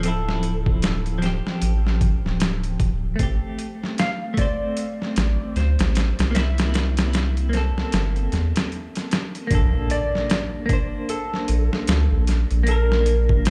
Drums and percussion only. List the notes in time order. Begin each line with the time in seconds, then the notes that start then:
0.03 closed hi-hat
0.29 snare
0.43 closed hi-hat
0.66 kick
0.82 snare, closed hi-hat
1.06 closed hi-hat
1.22 snare, closed hi-hat
1.47 snare
1.62 closed hi-hat
1.87 snare
2.01 kick, closed hi-hat
2.26 snare
2.40 snare, closed hi-hat
2.64 closed hi-hat
2.80 kick, closed hi-hat
3.19 kick, closed hi-hat
3.59 closed hi-hat
3.84 snare
3.98 snare, closed hi-hat
4.37 kick, closed hi-hat
4.77 closed hi-hat
5.02 snare
5.16 snare, closed hi-hat
5.56 snare, closed hi-hat
5.79 snare, closed hi-hat
5.95 snare, closed hi-hat
6.19 snare, closed hi-hat
6.35 snare, closed hi-hat
6.58 snare, closed hi-hat
6.74 snare, closed hi-hat
6.97 snare, closed hi-hat
7.13 snare, closed hi-hat
7.37 closed hi-hat
7.53 snare, closed hi-hat
7.78 snare
7.92 snare, closed hi-hat
8.16 closed hi-hat
8.32 snare, closed hi-hat
8.56 snare, closed hi-hat
8.72 closed hi-hat
8.95 snare, closed hi-hat
9.11 snare, closed hi-hat
9.35 closed hi-hat
9.51 kick, closed hi-hat
9.90 closed hi-hat
10.15 snare
10.30 snare, closed hi-hat
10.69 kick, closed hi-hat
11.09 closed hi-hat
11.34 snare
11.48 closed hi-hat
11.73 snare
11.87 snare, closed hi-hat
12.27 snare, closed hi-hat
12.51 closed hi-hat
12.67 closed hi-hat
12.92 snare
13.06 closed hi-hat
13.29 kick
13.45 snare, closed hi-hat